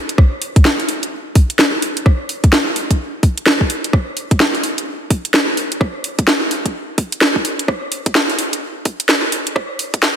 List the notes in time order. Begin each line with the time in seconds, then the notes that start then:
0.09 closed hi-hat
0.18 kick, cross-stick
0.42 open hi-hat
0.56 kick, closed hi-hat
0.65 snare
0.80 open hi-hat
0.89 open hi-hat
1.03 closed hi-hat
1.35 kick, open hi-hat
1.50 closed hi-hat
1.59 snare
1.82 open hi-hat
1.97 closed hi-hat
2.06 kick, cross-stick
2.29 open hi-hat
2.44 kick, closed hi-hat
2.53 snare
2.76 open hi-hat
2.91 kick, closed hi-hat
3.23 kick, open hi-hat
3.38 closed hi-hat
3.46 snare
3.61 kick
3.70 open hi-hat
3.84 closed hi-hat
3.93 kick, cross-stick
4.17 open hi-hat
4.31 kick, closed hi-hat
4.40 snare
4.55 open hi-hat
4.64 open hi-hat
4.78 closed hi-hat
5.11 kick, open hi-hat
5.25 closed hi-hat
5.34 snare
5.57 open hi-hat
5.72 closed hi-hat
5.81 kick, cross-stick
6.04 open hi-hat
6.19 kick, closed hi-hat
6.28 snare
6.51 open hi-hat
6.66 kick, closed hi-hat
6.98 kick, open hi-hat
7.12 closed hi-hat
7.21 snare
7.36 kick
7.45 open hi-hat
7.59 closed hi-hat
7.68 kick, cross-stick
7.92 open hi-hat
8.06 kick, closed hi-hat
8.15 snare
8.30 open hi-hat
8.39 open hi-hat
8.53 closed hi-hat
8.85 kick, open hi-hat
9.00 closed hi-hat
9.09 snare
9.32 open hi-hat
9.47 closed hi-hat
9.56 kick, cross-stick
9.79 open hi-hat
9.94 kick, closed hi-hat
10.03 snare